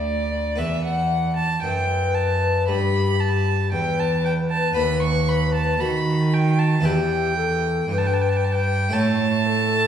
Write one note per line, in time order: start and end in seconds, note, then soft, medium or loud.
0.00 0.54 D2 soft
0.00 0.60 D2 soft
0.00 0.52 A3 soft
0.00 0.53 D4 soft
0.00 0.54 F#4 soft
0.00 0.60 D5 medium
0.00 1.35 D5 medium
0.56 1.59 E2 soft
0.56 1.63 E2 soft
0.56 1.58 B3 soft
0.56 4.72 B4 soft
0.56 0.84 E5 medium
0.84 1.36 F#5 medium
1.36 1.62 A5 medium
1.62 2.64 F#2 soft
1.62 2.70 F#2 medium
1.62 2.70 B4 medium
1.62 2.16 G5 medium
2.15 2.68 A5 medium
2.68 3.73 G2 medium
2.68 3.68 G2 soft
2.68 3.72 G4 medium
2.68 3.22 B5 medium
3.21 3.72 A5 medium
3.72 4.76 E2 soft
3.72 4.72 E2 soft
3.72 5.77 B4 medium
3.72 4.01 G5 medium
4.00 4.24 A5 medium
4.25 4.33 G5 medium
4.51 4.76 A5 medium
4.73 5.77 D#2 soft
4.73 5.79 D#2 medium
4.73 6.79 B3 soft
4.73 6.80 B4 soft
4.73 5.02 B5 medium
5.02 5.30 C#6 medium
5.29 5.54 B5 medium
5.55 5.82 A5 medium
5.80 6.81 D#3 soft
5.80 6.83 D#3 medium
5.80 6.83 F#4 medium
5.80 6.35 B5 medium
6.34 6.61 G5 medium
6.59 6.87 A5 medium
6.81 8.87 B3 soft
6.81 8.88 E4 soft
6.81 8.89 B4 soft
6.85 7.85 E2 soft
6.85 7.87 E2 medium
6.85 7.36 G4 medium
6.85 7.90 G5 medium
7.37 7.88 A4 medium
7.88 8.89 G2 soft
7.88 8.92 G2 medium
7.88 8.64 B4 medium
7.88 8.00 G5 medium
7.98 8.08 A5 medium
8.06 8.15 G5 medium
8.14 8.23 A5 medium
8.22 8.30 G5 medium
8.29 8.38 A5 medium
8.36 8.46 G5 medium
8.44 8.54 A5 medium
8.52 8.94 G5 medium
8.89 9.87 A3 soft
8.89 9.87 E4 soft
8.89 9.87 C#5 soft
8.89 9.87 A5 loud
8.93 9.87 A2 soft
8.93 9.87 A2 medium
8.93 9.48 C#5 medium
9.47 9.87 A4 medium